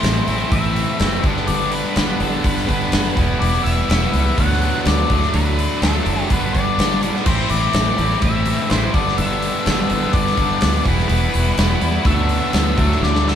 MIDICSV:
0, 0, Header, 1, 5, 480
1, 0, Start_track
1, 0, Tempo, 480769
1, 1486, Time_signature, 4, 2, 24, 8
1, 13330, End_track
2, 0, Start_track
2, 0, Title_t, "Lead electric guitar"
2, 0, Program_c, 0, 29
2, 0, Note_on_c, 0, 72, 71
2, 520, Note_on_c, 0, 76, 108
2, 553, Note_off_c, 0, 72, 0
2, 1204, Note_off_c, 0, 76, 0
2, 1468, Note_on_c, 0, 74, 100
2, 1714, Note_on_c, 0, 71, 92
2, 1725, Note_off_c, 0, 74, 0
2, 1953, Note_off_c, 0, 71, 0
2, 1965, Note_on_c, 0, 71, 91
2, 2190, Note_off_c, 0, 71, 0
2, 2215, Note_on_c, 0, 69, 84
2, 2457, Note_off_c, 0, 69, 0
2, 2461, Note_on_c, 0, 71, 93
2, 2691, Note_off_c, 0, 71, 0
2, 2703, Note_on_c, 0, 71, 74
2, 3143, Note_off_c, 0, 71, 0
2, 3395, Note_on_c, 0, 74, 95
2, 3625, Note_off_c, 0, 74, 0
2, 3629, Note_on_c, 0, 76, 103
2, 4364, Note_on_c, 0, 78, 112
2, 4381, Note_off_c, 0, 76, 0
2, 4813, Note_off_c, 0, 78, 0
2, 4868, Note_on_c, 0, 74, 100
2, 5333, Note_on_c, 0, 71, 90
2, 5353, Note_off_c, 0, 74, 0
2, 5814, Note_off_c, 0, 71, 0
2, 5818, Note_on_c, 0, 69, 80
2, 6307, Note_off_c, 0, 69, 0
2, 6315, Note_on_c, 0, 71, 95
2, 6516, Note_on_c, 0, 74, 87
2, 6548, Note_off_c, 0, 71, 0
2, 6968, Note_off_c, 0, 74, 0
2, 7253, Note_on_c, 0, 72, 81
2, 7473, Note_off_c, 0, 72, 0
2, 7490, Note_on_c, 0, 74, 84
2, 8167, Note_off_c, 0, 74, 0
2, 8214, Note_on_c, 0, 76, 113
2, 8655, Note_off_c, 0, 76, 0
2, 8683, Note_on_c, 0, 72, 83
2, 8906, Note_off_c, 0, 72, 0
2, 8924, Note_on_c, 0, 74, 91
2, 9158, Note_off_c, 0, 74, 0
2, 9162, Note_on_c, 0, 76, 93
2, 10111, Note_off_c, 0, 76, 0
2, 10115, Note_on_c, 0, 74, 81
2, 10798, Note_off_c, 0, 74, 0
2, 11066, Note_on_c, 0, 71, 83
2, 12042, Note_on_c, 0, 76, 95
2, 12063, Note_off_c, 0, 71, 0
2, 13008, Note_off_c, 0, 76, 0
2, 13012, Note_on_c, 0, 74, 100
2, 13231, Note_off_c, 0, 74, 0
2, 13264, Note_on_c, 0, 76, 98
2, 13330, Note_off_c, 0, 76, 0
2, 13330, End_track
3, 0, Start_track
3, 0, Title_t, "Distorted electric guitar"
3, 0, Program_c, 1, 30
3, 0, Note_on_c, 1, 45, 84
3, 0, Note_on_c, 1, 52, 89
3, 0, Note_on_c, 1, 57, 87
3, 0, Note_on_c, 1, 60, 90
3, 0, Note_on_c, 1, 64, 89
3, 262, Note_off_c, 1, 64, 0
3, 269, Note_off_c, 1, 45, 0
3, 271, Note_off_c, 1, 60, 0
3, 274, Note_off_c, 1, 52, 0
3, 274, Note_on_c, 1, 64, 86
3, 277, Note_off_c, 1, 57, 0
3, 283, Note_on_c, 1, 60, 75
3, 290, Note_on_c, 1, 57, 70
3, 298, Note_on_c, 1, 52, 73
3, 307, Note_on_c, 1, 45, 66
3, 984, Note_off_c, 1, 45, 0
3, 986, Note_off_c, 1, 64, 0
3, 991, Note_off_c, 1, 60, 0
3, 992, Note_off_c, 1, 52, 0
3, 994, Note_off_c, 1, 57, 0
3, 996, Note_on_c, 1, 45, 76
3, 1004, Note_on_c, 1, 52, 83
3, 1010, Note_on_c, 1, 57, 76
3, 1017, Note_on_c, 1, 60, 87
3, 1025, Note_on_c, 1, 64, 88
3, 1226, Note_off_c, 1, 45, 0
3, 1231, Note_off_c, 1, 52, 0
3, 1234, Note_off_c, 1, 57, 0
3, 1237, Note_off_c, 1, 60, 0
3, 1237, Note_on_c, 1, 43, 83
3, 1241, Note_off_c, 1, 64, 0
3, 1244, Note_on_c, 1, 50, 81
3, 1253, Note_on_c, 1, 59, 94
3, 1255, Note_on_c, 1, 55, 82
3, 1258, Note_on_c, 1, 62, 101
3, 1941, Note_off_c, 1, 43, 0
3, 1946, Note_off_c, 1, 50, 0
3, 1953, Note_on_c, 1, 43, 68
3, 1954, Note_off_c, 1, 55, 0
3, 1958, Note_on_c, 1, 50, 77
3, 1959, Note_off_c, 1, 62, 0
3, 1966, Note_on_c, 1, 55, 89
3, 1967, Note_off_c, 1, 59, 0
3, 1971, Note_on_c, 1, 59, 79
3, 1978, Note_on_c, 1, 62, 81
3, 2667, Note_off_c, 1, 43, 0
3, 2668, Note_off_c, 1, 62, 0
3, 2669, Note_off_c, 1, 50, 0
3, 2671, Note_off_c, 1, 59, 0
3, 2673, Note_off_c, 1, 55, 0
3, 2680, Note_on_c, 1, 62, 72
3, 2683, Note_on_c, 1, 59, 74
3, 2695, Note_on_c, 1, 55, 67
3, 2698, Note_on_c, 1, 50, 74
3, 2708, Note_on_c, 1, 43, 66
3, 3150, Note_off_c, 1, 62, 0
3, 3152, Note_off_c, 1, 55, 0
3, 3152, Note_off_c, 1, 59, 0
3, 3153, Note_off_c, 1, 50, 0
3, 3157, Note_on_c, 1, 52, 91
3, 3164, Note_off_c, 1, 43, 0
3, 3164, Note_on_c, 1, 55, 93
3, 3173, Note_on_c, 1, 59, 103
3, 3186, Note_on_c, 1, 64, 91
3, 3869, Note_off_c, 1, 52, 0
3, 3873, Note_off_c, 1, 55, 0
3, 3877, Note_off_c, 1, 59, 0
3, 3884, Note_off_c, 1, 64, 0
3, 3888, Note_on_c, 1, 52, 74
3, 3899, Note_on_c, 1, 55, 82
3, 3905, Note_on_c, 1, 59, 84
3, 3910, Note_on_c, 1, 64, 82
3, 4355, Note_off_c, 1, 52, 0
3, 4360, Note_off_c, 1, 55, 0
3, 4363, Note_off_c, 1, 59, 0
3, 4366, Note_off_c, 1, 64, 0
3, 4373, Note_on_c, 1, 50, 82
3, 4378, Note_on_c, 1, 54, 90
3, 4391, Note_on_c, 1, 59, 93
3, 4397, Note_on_c, 1, 62, 96
3, 5077, Note_off_c, 1, 50, 0
3, 5079, Note_off_c, 1, 54, 0
3, 5086, Note_off_c, 1, 59, 0
3, 5089, Note_off_c, 1, 62, 0
3, 5091, Note_on_c, 1, 50, 85
3, 5102, Note_on_c, 1, 54, 92
3, 5116, Note_on_c, 1, 57, 91
3, 5121, Note_on_c, 1, 62, 92
3, 5796, Note_off_c, 1, 50, 0
3, 5801, Note_off_c, 1, 54, 0
3, 5808, Note_off_c, 1, 57, 0
3, 5808, Note_on_c, 1, 50, 76
3, 5811, Note_off_c, 1, 62, 0
3, 5815, Note_on_c, 1, 54, 75
3, 5830, Note_on_c, 1, 57, 80
3, 5840, Note_on_c, 1, 62, 74
3, 6274, Note_off_c, 1, 50, 0
3, 6277, Note_off_c, 1, 54, 0
3, 6278, Note_on_c, 1, 43, 80
3, 6285, Note_off_c, 1, 57, 0
3, 6288, Note_on_c, 1, 50, 85
3, 6289, Note_off_c, 1, 62, 0
3, 6297, Note_on_c, 1, 55, 94
3, 6303, Note_on_c, 1, 59, 92
3, 6307, Note_on_c, 1, 62, 104
3, 6987, Note_off_c, 1, 62, 0
3, 6988, Note_off_c, 1, 43, 0
3, 6993, Note_off_c, 1, 50, 0
3, 6996, Note_off_c, 1, 59, 0
3, 6997, Note_off_c, 1, 55, 0
3, 6999, Note_on_c, 1, 62, 75
3, 7008, Note_on_c, 1, 59, 78
3, 7014, Note_on_c, 1, 55, 82
3, 7025, Note_on_c, 1, 50, 66
3, 7027, Note_on_c, 1, 43, 66
3, 7229, Note_off_c, 1, 62, 0
3, 7233, Note_off_c, 1, 43, 0
3, 7233, Note_off_c, 1, 59, 0
3, 7236, Note_off_c, 1, 55, 0
3, 7237, Note_on_c, 1, 45, 83
3, 7242, Note_off_c, 1, 50, 0
3, 7246, Note_on_c, 1, 52, 82
3, 7252, Note_on_c, 1, 57, 91
3, 7259, Note_on_c, 1, 60, 97
3, 7265, Note_on_c, 1, 64, 95
3, 7946, Note_off_c, 1, 45, 0
3, 7950, Note_off_c, 1, 64, 0
3, 7951, Note_off_c, 1, 52, 0
3, 7954, Note_off_c, 1, 57, 0
3, 7958, Note_off_c, 1, 60, 0
3, 7962, Note_on_c, 1, 64, 87
3, 7975, Note_on_c, 1, 60, 78
3, 7982, Note_on_c, 1, 57, 73
3, 7985, Note_on_c, 1, 52, 69
3, 7990, Note_on_c, 1, 45, 69
3, 8668, Note_off_c, 1, 64, 0
3, 8669, Note_off_c, 1, 45, 0
3, 8675, Note_off_c, 1, 60, 0
3, 8678, Note_off_c, 1, 57, 0
3, 8680, Note_off_c, 1, 52, 0
3, 8681, Note_on_c, 1, 45, 76
3, 8690, Note_on_c, 1, 52, 87
3, 8692, Note_on_c, 1, 57, 87
3, 8703, Note_on_c, 1, 60, 81
3, 8709, Note_on_c, 1, 64, 96
3, 8908, Note_off_c, 1, 45, 0
3, 8912, Note_off_c, 1, 52, 0
3, 8914, Note_off_c, 1, 57, 0
3, 8918, Note_on_c, 1, 43, 88
3, 8919, Note_off_c, 1, 60, 0
3, 8922, Note_off_c, 1, 64, 0
3, 8930, Note_on_c, 1, 50, 91
3, 8931, Note_on_c, 1, 55, 95
3, 8943, Note_on_c, 1, 59, 92
3, 8946, Note_on_c, 1, 62, 88
3, 9626, Note_off_c, 1, 43, 0
3, 9631, Note_off_c, 1, 50, 0
3, 9632, Note_off_c, 1, 55, 0
3, 9639, Note_on_c, 1, 43, 80
3, 9640, Note_off_c, 1, 62, 0
3, 9645, Note_on_c, 1, 50, 76
3, 9650, Note_on_c, 1, 55, 75
3, 9653, Note_off_c, 1, 59, 0
3, 9657, Note_on_c, 1, 59, 82
3, 9663, Note_on_c, 1, 62, 78
3, 10346, Note_off_c, 1, 43, 0
3, 10349, Note_off_c, 1, 50, 0
3, 10351, Note_off_c, 1, 55, 0
3, 10352, Note_off_c, 1, 62, 0
3, 10355, Note_off_c, 1, 59, 0
3, 10364, Note_on_c, 1, 62, 77
3, 10369, Note_on_c, 1, 59, 70
3, 10377, Note_on_c, 1, 55, 72
3, 10384, Note_on_c, 1, 50, 66
3, 10386, Note_on_c, 1, 43, 60
3, 10828, Note_off_c, 1, 62, 0
3, 10831, Note_off_c, 1, 59, 0
3, 10832, Note_off_c, 1, 55, 0
3, 10833, Note_off_c, 1, 50, 0
3, 10837, Note_on_c, 1, 52, 83
3, 10840, Note_off_c, 1, 43, 0
3, 10844, Note_on_c, 1, 55, 89
3, 10857, Note_on_c, 1, 59, 97
3, 10863, Note_on_c, 1, 64, 96
3, 11537, Note_off_c, 1, 52, 0
3, 11549, Note_off_c, 1, 55, 0
3, 11549, Note_on_c, 1, 52, 68
3, 11555, Note_off_c, 1, 59, 0
3, 11558, Note_off_c, 1, 64, 0
3, 11560, Note_on_c, 1, 55, 77
3, 11568, Note_on_c, 1, 59, 86
3, 11574, Note_on_c, 1, 64, 85
3, 12021, Note_off_c, 1, 52, 0
3, 12025, Note_on_c, 1, 50, 81
3, 12026, Note_off_c, 1, 55, 0
3, 12031, Note_off_c, 1, 59, 0
3, 12034, Note_off_c, 1, 64, 0
3, 12035, Note_on_c, 1, 54, 91
3, 12042, Note_on_c, 1, 59, 101
3, 12051, Note_on_c, 1, 62, 86
3, 12734, Note_off_c, 1, 50, 0
3, 12745, Note_off_c, 1, 54, 0
3, 12746, Note_on_c, 1, 50, 81
3, 12748, Note_off_c, 1, 59, 0
3, 12753, Note_off_c, 1, 62, 0
3, 12761, Note_on_c, 1, 54, 100
3, 12768, Note_on_c, 1, 57, 103
3, 12780, Note_on_c, 1, 62, 90
3, 13330, Note_off_c, 1, 50, 0
3, 13330, Note_off_c, 1, 54, 0
3, 13330, Note_off_c, 1, 57, 0
3, 13330, Note_off_c, 1, 62, 0
3, 13330, End_track
4, 0, Start_track
4, 0, Title_t, "Fingered electric bass"
4, 0, Program_c, 2, 33
4, 31, Note_on_c, 2, 33, 83
4, 199, Note_off_c, 2, 33, 0
4, 275, Note_on_c, 2, 33, 70
4, 442, Note_off_c, 2, 33, 0
4, 515, Note_on_c, 2, 33, 85
4, 846, Note_off_c, 2, 33, 0
4, 998, Note_on_c, 2, 30, 92
4, 1165, Note_off_c, 2, 30, 0
4, 1235, Note_on_c, 2, 31, 82
4, 1403, Note_off_c, 2, 31, 0
4, 1479, Note_on_c, 2, 31, 100
4, 1810, Note_off_c, 2, 31, 0
4, 1958, Note_on_c, 2, 31, 76
4, 2125, Note_off_c, 2, 31, 0
4, 2199, Note_on_c, 2, 31, 78
4, 2366, Note_off_c, 2, 31, 0
4, 2443, Note_on_c, 2, 31, 93
4, 2609, Note_off_c, 2, 31, 0
4, 2683, Note_on_c, 2, 31, 86
4, 2849, Note_off_c, 2, 31, 0
4, 2919, Note_on_c, 2, 30, 95
4, 3086, Note_off_c, 2, 30, 0
4, 3166, Note_on_c, 2, 28, 87
4, 3331, Note_off_c, 2, 28, 0
4, 3401, Note_on_c, 2, 28, 96
4, 3568, Note_off_c, 2, 28, 0
4, 3644, Note_on_c, 2, 28, 78
4, 3810, Note_off_c, 2, 28, 0
4, 3884, Note_on_c, 2, 28, 84
4, 4050, Note_off_c, 2, 28, 0
4, 4130, Note_on_c, 2, 37, 78
4, 4294, Note_off_c, 2, 37, 0
4, 4373, Note_on_c, 2, 38, 85
4, 4699, Note_off_c, 2, 38, 0
4, 4850, Note_on_c, 2, 38, 88
4, 5014, Note_off_c, 2, 38, 0
4, 5092, Note_on_c, 2, 38, 77
4, 5255, Note_off_c, 2, 38, 0
4, 5334, Note_on_c, 2, 38, 92
4, 5660, Note_off_c, 2, 38, 0
4, 5809, Note_on_c, 2, 38, 80
4, 5973, Note_off_c, 2, 38, 0
4, 6053, Note_on_c, 2, 30, 83
4, 6215, Note_off_c, 2, 30, 0
4, 6298, Note_on_c, 2, 31, 77
4, 6458, Note_off_c, 2, 31, 0
4, 6534, Note_on_c, 2, 31, 77
4, 6696, Note_off_c, 2, 31, 0
4, 6768, Note_on_c, 2, 31, 85
4, 7095, Note_off_c, 2, 31, 0
4, 7251, Note_on_c, 2, 33, 89
4, 7413, Note_off_c, 2, 33, 0
4, 7492, Note_on_c, 2, 33, 78
4, 7654, Note_off_c, 2, 33, 0
4, 7726, Note_on_c, 2, 33, 85
4, 7889, Note_off_c, 2, 33, 0
4, 7973, Note_on_c, 2, 33, 74
4, 8134, Note_off_c, 2, 33, 0
4, 8211, Note_on_c, 2, 33, 89
4, 8536, Note_off_c, 2, 33, 0
4, 8695, Note_on_c, 2, 33, 78
4, 8855, Note_off_c, 2, 33, 0
4, 8927, Note_on_c, 2, 31, 89
4, 9089, Note_off_c, 2, 31, 0
4, 9170, Note_on_c, 2, 31, 98
4, 9495, Note_off_c, 2, 31, 0
4, 9648, Note_on_c, 2, 31, 86
4, 9810, Note_off_c, 2, 31, 0
4, 9889, Note_on_c, 2, 31, 73
4, 10051, Note_off_c, 2, 31, 0
4, 10118, Note_on_c, 2, 31, 93
4, 10283, Note_off_c, 2, 31, 0
4, 10361, Note_on_c, 2, 31, 79
4, 10525, Note_off_c, 2, 31, 0
4, 10606, Note_on_c, 2, 38, 85
4, 10768, Note_off_c, 2, 38, 0
4, 10842, Note_on_c, 2, 28, 83
4, 11006, Note_off_c, 2, 28, 0
4, 11075, Note_on_c, 2, 28, 98
4, 11241, Note_off_c, 2, 28, 0
4, 11330, Note_on_c, 2, 28, 79
4, 11491, Note_off_c, 2, 28, 0
4, 11561, Note_on_c, 2, 28, 92
4, 11725, Note_off_c, 2, 28, 0
4, 11794, Note_on_c, 2, 40, 73
4, 11960, Note_off_c, 2, 40, 0
4, 12031, Note_on_c, 2, 38, 88
4, 12362, Note_off_c, 2, 38, 0
4, 12514, Note_on_c, 2, 38, 84
4, 12753, Note_off_c, 2, 38, 0
4, 12757, Note_on_c, 2, 38, 90
4, 12923, Note_off_c, 2, 38, 0
4, 12994, Note_on_c, 2, 38, 94
4, 13325, Note_off_c, 2, 38, 0
4, 13330, End_track
5, 0, Start_track
5, 0, Title_t, "Drums"
5, 32, Note_on_c, 9, 46, 74
5, 44, Note_on_c, 9, 38, 108
5, 132, Note_off_c, 9, 46, 0
5, 144, Note_off_c, 9, 38, 0
5, 275, Note_on_c, 9, 46, 55
5, 375, Note_off_c, 9, 46, 0
5, 515, Note_on_c, 9, 46, 65
5, 516, Note_on_c, 9, 36, 96
5, 615, Note_off_c, 9, 46, 0
5, 616, Note_off_c, 9, 36, 0
5, 761, Note_on_c, 9, 46, 52
5, 861, Note_off_c, 9, 46, 0
5, 994, Note_on_c, 9, 46, 71
5, 1006, Note_on_c, 9, 38, 99
5, 1093, Note_off_c, 9, 46, 0
5, 1105, Note_off_c, 9, 38, 0
5, 1232, Note_on_c, 9, 46, 53
5, 1236, Note_on_c, 9, 36, 99
5, 1332, Note_off_c, 9, 46, 0
5, 1335, Note_off_c, 9, 36, 0
5, 1363, Note_on_c, 9, 38, 32
5, 1463, Note_off_c, 9, 38, 0
5, 1473, Note_on_c, 9, 46, 64
5, 1573, Note_off_c, 9, 46, 0
5, 1714, Note_on_c, 9, 46, 54
5, 1814, Note_off_c, 9, 46, 0
5, 1956, Note_on_c, 9, 46, 80
5, 1968, Note_on_c, 9, 38, 111
5, 2056, Note_off_c, 9, 46, 0
5, 2068, Note_off_c, 9, 38, 0
5, 2197, Note_on_c, 9, 46, 58
5, 2297, Note_off_c, 9, 46, 0
5, 2438, Note_on_c, 9, 46, 69
5, 2440, Note_on_c, 9, 36, 89
5, 2538, Note_off_c, 9, 46, 0
5, 2540, Note_off_c, 9, 36, 0
5, 2574, Note_on_c, 9, 38, 34
5, 2674, Note_off_c, 9, 38, 0
5, 2682, Note_on_c, 9, 36, 68
5, 2683, Note_on_c, 9, 46, 53
5, 2782, Note_off_c, 9, 36, 0
5, 2783, Note_off_c, 9, 46, 0
5, 2916, Note_on_c, 9, 46, 82
5, 2928, Note_on_c, 9, 38, 101
5, 3016, Note_off_c, 9, 46, 0
5, 3028, Note_off_c, 9, 38, 0
5, 3164, Note_on_c, 9, 36, 93
5, 3165, Note_on_c, 9, 46, 58
5, 3264, Note_off_c, 9, 36, 0
5, 3265, Note_off_c, 9, 46, 0
5, 3411, Note_on_c, 9, 46, 78
5, 3511, Note_off_c, 9, 46, 0
5, 3657, Note_on_c, 9, 46, 58
5, 3757, Note_off_c, 9, 46, 0
5, 3892, Note_on_c, 9, 46, 79
5, 3904, Note_on_c, 9, 38, 108
5, 3991, Note_off_c, 9, 46, 0
5, 4003, Note_off_c, 9, 38, 0
5, 4129, Note_on_c, 9, 46, 57
5, 4229, Note_off_c, 9, 46, 0
5, 4371, Note_on_c, 9, 36, 104
5, 4372, Note_on_c, 9, 46, 67
5, 4471, Note_off_c, 9, 36, 0
5, 4472, Note_off_c, 9, 46, 0
5, 4509, Note_on_c, 9, 38, 30
5, 4609, Note_off_c, 9, 38, 0
5, 4610, Note_on_c, 9, 46, 49
5, 4710, Note_off_c, 9, 46, 0
5, 4847, Note_on_c, 9, 46, 76
5, 4859, Note_on_c, 9, 38, 100
5, 4947, Note_off_c, 9, 46, 0
5, 4959, Note_off_c, 9, 38, 0
5, 5089, Note_on_c, 9, 46, 51
5, 5091, Note_on_c, 9, 36, 103
5, 5188, Note_off_c, 9, 46, 0
5, 5191, Note_off_c, 9, 36, 0
5, 5217, Note_on_c, 9, 38, 31
5, 5317, Note_off_c, 9, 38, 0
5, 5329, Note_on_c, 9, 46, 77
5, 5429, Note_off_c, 9, 46, 0
5, 5578, Note_on_c, 9, 46, 55
5, 5678, Note_off_c, 9, 46, 0
5, 5812, Note_on_c, 9, 46, 77
5, 5824, Note_on_c, 9, 38, 108
5, 5912, Note_off_c, 9, 46, 0
5, 5924, Note_off_c, 9, 38, 0
5, 6051, Note_on_c, 9, 46, 56
5, 6151, Note_off_c, 9, 46, 0
5, 6291, Note_on_c, 9, 46, 67
5, 6294, Note_on_c, 9, 36, 95
5, 6390, Note_off_c, 9, 46, 0
5, 6394, Note_off_c, 9, 36, 0
5, 6534, Note_on_c, 9, 36, 69
5, 6538, Note_on_c, 9, 46, 57
5, 6634, Note_off_c, 9, 36, 0
5, 6638, Note_off_c, 9, 46, 0
5, 6777, Note_on_c, 9, 46, 78
5, 6789, Note_on_c, 9, 38, 106
5, 6877, Note_off_c, 9, 46, 0
5, 6889, Note_off_c, 9, 38, 0
5, 7016, Note_on_c, 9, 46, 57
5, 7116, Note_off_c, 9, 46, 0
5, 7145, Note_on_c, 9, 38, 33
5, 7245, Note_off_c, 9, 38, 0
5, 7247, Note_on_c, 9, 49, 93
5, 7251, Note_on_c, 9, 36, 109
5, 7347, Note_off_c, 9, 49, 0
5, 7351, Note_off_c, 9, 36, 0
5, 7483, Note_on_c, 9, 46, 59
5, 7583, Note_off_c, 9, 46, 0
5, 7722, Note_on_c, 9, 46, 84
5, 7734, Note_on_c, 9, 38, 115
5, 7821, Note_off_c, 9, 46, 0
5, 7833, Note_off_c, 9, 38, 0
5, 7966, Note_on_c, 9, 46, 58
5, 8066, Note_off_c, 9, 46, 0
5, 8205, Note_on_c, 9, 46, 75
5, 8210, Note_on_c, 9, 36, 89
5, 8304, Note_off_c, 9, 46, 0
5, 8310, Note_off_c, 9, 36, 0
5, 8442, Note_on_c, 9, 46, 58
5, 8541, Note_off_c, 9, 46, 0
5, 8685, Note_on_c, 9, 46, 73
5, 8697, Note_on_c, 9, 38, 99
5, 8785, Note_off_c, 9, 46, 0
5, 8797, Note_off_c, 9, 38, 0
5, 8925, Note_on_c, 9, 46, 55
5, 8927, Note_on_c, 9, 36, 92
5, 9025, Note_off_c, 9, 46, 0
5, 9027, Note_off_c, 9, 36, 0
5, 9066, Note_on_c, 9, 38, 31
5, 9165, Note_on_c, 9, 46, 65
5, 9166, Note_off_c, 9, 38, 0
5, 9265, Note_off_c, 9, 46, 0
5, 9408, Note_on_c, 9, 46, 55
5, 9508, Note_off_c, 9, 46, 0
5, 9646, Note_on_c, 9, 46, 82
5, 9658, Note_on_c, 9, 38, 107
5, 9745, Note_off_c, 9, 46, 0
5, 9757, Note_off_c, 9, 38, 0
5, 9881, Note_on_c, 9, 46, 56
5, 9981, Note_off_c, 9, 46, 0
5, 10115, Note_on_c, 9, 46, 70
5, 10121, Note_on_c, 9, 36, 91
5, 10215, Note_off_c, 9, 46, 0
5, 10221, Note_off_c, 9, 36, 0
5, 10249, Note_on_c, 9, 38, 33
5, 10349, Note_off_c, 9, 38, 0
5, 10357, Note_on_c, 9, 46, 51
5, 10359, Note_on_c, 9, 36, 75
5, 10457, Note_off_c, 9, 46, 0
5, 10459, Note_off_c, 9, 36, 0
5, 10591, Note_on_c, 9, 46, 73
5, 10603, Note_on_c, 9, 38, 105
5, 10691, Note_off_c, 9, 46, 0
5, 10703, Note_off_c, 9, 38, 0
5, 10837, Note_on_c, 9, 36, 96
5, 10839, Note_on_c, 9, 46, 59
5, 10937, Note_off_c, 9, 36, 0
5, 10939, Note_off_c, 9, 46, 0
5, 10974, Note_on_c, 9, 38, 34
5, 11073, Note_off_c, 9, 38, 0
5, 11076, Note_on_c, 9, 46, 76
5, 11176, Note_off_c, 9, 46, 0
5, 11321, Note_on_c, 9, 46, 62
5, 11420, Note_off_c, 9, 46, 0
5, 11558, Note_on_c, 9, 46, 88
5, 11570, Note_on_c, 9, 38, 120
5, 11658, Note_off_c, 9, 46, 0
5, 11670, Note_off_c, 9, 38, 0
5, 11796, Note_on_c, 9, 46, 57
5, 11896, Note_off_c, 9, 46, 0
5, 12029, Note_on_c, 9, 46, 72
5, 12033, Note_on_c, 9, 36, 99
5, 12129, Note_off_c, 9, 46, 0
5, 12133, Note_off_c, 9, 36, 0
5, 12271, Note_on_c, 9, 46, 51
5, 12371, Note_off_c, 9, 46, 0
5, 12512, Note_on_c, 9, 46, 80
5, 12524, Note_on_c, 9, 38, 110
5, 12611, Note_off_c, 9, 46, 0
5, 12623, Note_off_c, 9, 38, 0
5, 12756, Note_on_c, 9, 36, 102
5, 12757, Note_on_c, 9, 46, 59
5, 12856, Note_off_c, 9, 36, 0
5, 12857, Note_off_c, 9, 46, 0
5, 12895, Note_on_c, 9, 38, 32
5, 12994, Note_off_c, 9, 38, 0
5, 13011, Note_on_c, 9, 38, 61
5, 13111, Note_off_c, 9, 38, 0
5, 13130, Note_on_c, 9, 38, 63
5, 13230, Note_off_c, 9, 38, 0
5, 13256, Note_on_c, 9, 38, 66
5, 13330, Note_off_c, 9, 38, 0
5, 13330, End_track
0, 0, End_of_file